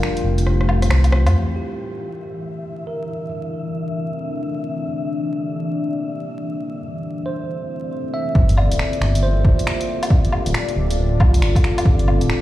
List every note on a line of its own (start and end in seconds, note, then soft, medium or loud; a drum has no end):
0.00 1.35 G3 medium
0.00 1.32 A3 medium
0.00 1.32 E4 medium
0.00 1.30 F4 medium
0.00 1.35 G4 medium
0.00 1.32 C5 medium
0.00 finger snap loud
0.17 closed hi-hat soft
0.24 0.45 F1 medium
0.38 closed hi-hat medium
0.46 0.89 F1 medium
0.46 cross-stick medium
0.61 cross-stick medium
0.69 low woodblock medium
0.82 cross-stick medium
0.82 closed hi-hat medium
0.89 1.10 C2 loud
0.89 finger snap loud
0.89 cross-stick medium
1.04 closed hi-hat soft
1.04 low woodblock soft
1.11 1.26 C2 medium
1.11 cross-stick loud
1.25 1.33 F2 loud
1.25 cross-stick medium
1.25 closed hi-hat medium
1.25 low woodblock medium
1.32 8.36 E3 medium
1.32 3.07 A#3 medium
1.32 3.07 D4 medium
1.32 3.07 G4 medium
1.32 4.80 D5 medium
1.32 8.36 E5 medium
1.56 2.23 G4 soft
2.87 3.28 A#4 soft
3.08 4.83 C4 medium
3.08 6.56 D4 medium
3.08 4.82 A4 medium
4.84 6.58 A#3 medium
4.84 6.58 G4 medium
4.84 6.58 D5 medium
6.60 8.34 C4 medium
6.60 8.34 E4 medium
6.60 8.34 A4 medium
6.60 8.34 E5 medium
7.26 7.93 C5 medium
8.14 8.54 E5 medium
8.35 8.69 G1 loud
8.35 10.09 A#3 medium
8.35 10.08 F4 medium
8.35 10.09 G4 medium
8.35 12.41 D5 medium
8.35 kick loud
8.49 closed hi-hat soft
8.57 9.24 D5 medium
8.57 low woodblock medium
8.71 8.78 D1 loud
8.71 closed hi-hat medium
8.79 finger snap loud
8.93 closed hi-hat soft
9.01 9.43 G1 medium
9.01 finger snap medium
9.15 closed hi-hat medium
9.23 9.90 C5 medium
9.44 9.57 G1 medium
9.44 kick loud
9.59 closed hi-hat medium
9.67 finger snap loud
9.81 closed hi-hat soft
10.03 closed hi-hat medium
10.03 low woodblock medium
10.09 11.83 C4 medium
10.09 11.83 F4 medium
10.09 11.83 A4 medium
10.09 kick loud
10.25 closed hi-hat soft
10.33 low woodblock medium
10.46 10.53 D1 loud
10.46 closed hi-hat medium
10.54 finger snap loud
10.69 closed hi-hat soft
10.76 10.96 D1 medium
10.90 closed hi-hat medium
10.98 11.22 D1 loud
11.20 11.43 C2 medium
11.20 kick loud
11.20 low woodblock medium
11.34 closed hi-hat medium
11.42 11.54 G1 loud
11.42 finger snap loud
11.55 kick loud
11.55 closed hi-hat soft
11.55 low woodblock soft
11.64 finger snap medium
11.78 closed hi-hat medium
11.78 low woodblock medium
11.85 12.19 G1 loud
11.85 kick loud
11.99 closed hi-hat soft
12.08 low woodblock medium
12.21 12.28 D1 loud
12.21 closed hi-hat medium
12.30 finger snap loud